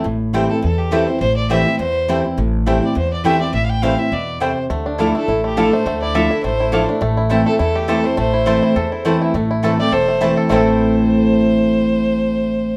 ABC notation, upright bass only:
X:1
M:4/4
L:1/8
Q:"Swing" 1/4=207
K:Am
V:1 name="Upright bass" clef=bass
A,,,4 E,,4 | A,,,4 E,,4 | A,,,4 E,,4 | A,,,4 E,,4 |
D,,4 A,,,4 | D,,4 A,,,4 | A,,,4 E,,4 | A,,,4 E,,4 |
A,,,4 E,,,4 | A,,,8- | A,,,8 |]